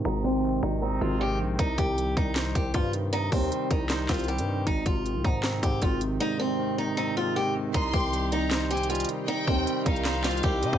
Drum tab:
HH |------------------------------------------------------------------------------------------------|x-----------x-----------x-----------------------x-----------x-----------x-----------x-----------|x-----------o-----------x-----------x-----------x-----------x--x--x--x--x-----x-----------------|x-----------x-----------x-----------------------x-----------x-----------x-----------x-----------|
CP |------------------------------------------------------------------------------------------------|------------------------------------------------x-----------------------------------------------|------------------------------------------------x-----------x-----------------------------------|------------------------------------------------x-----------------------------------------------|
SD |------------------------------------------------------------------------------------------------|------------------------------------------------o-----------------------------------------------|------------------------------------------------o-----------o-----------------------------------|------------------------------------------------o-----------------------------------------------|
BD |------------------------------------------------------------------------------------------------|o-----------o-----------------------o-----------------------o-----------o-----------------------|------------o-----------------------o-----------------------o-----------------------------------|o-----------o-----------------------o-----------------------o-----------o-----------------------|

HH |------------------------------------------------------------------------------------------------|x-----------------------x-----------x-----------x-----------x---x---x---x--x--x--x--x-----------|x-----------------------x-----------x-----x-----x-----------x---x---x---x-----------x-----------|
CP |------------------------------------------------------------------------------------------------|------------------------------------------------x-----------------------------------------------|------------------------------------------------x-----------x-----------------------------------|
SD |------------------------------------------------------------------------------------------------|------------------------------------------------o-----------------------------------------------|------------------------------------------------o-----------o-----------------------------------|
BD |------------------------------------------------------------------------------------------------|o-----------o-----------------------------------------------------------------------------------|------------o-----------------------o-----------------------------------o-----------------o-----|